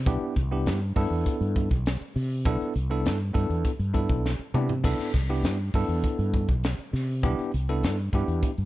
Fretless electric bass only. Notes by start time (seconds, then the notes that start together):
0.06 C2
0.22 muted fretless electric bass stroke
0.36 C2
0.66 G2
0.96 G2
1.10 E2
1.41 G2
1.71 B1
2.01 muted fretless electric bass stroke
2.16 C3
2.45 C2
2.76 C2
3.05 G2
3.35 G2
3.50 E2
3.79 G2
4.09 B1
4.54 C3
4.84 C2
5.14 C2
5.43 G2
5.74 G2
5.88 E2
6.03 muted fretless electric bass stroke
6.19 G2
6.48 B1
6.78 muted fretless electric bass stroke
6.93 C3
7.23 C2
7.39 muted fretless electric bass stroke
7.54 C2
7.83 G2
8.13 G2
8.28 E2
8.42 muted fretless electric bass stroke
8.58 G2